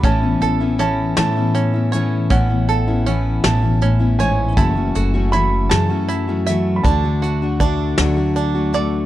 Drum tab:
HH |xxxxxx|xxxxxx|xxxxxx|xxxxxx|
SD |---o--|---o--|---o--|---o--|
BD |o-----|o-----|o-----|o-o---|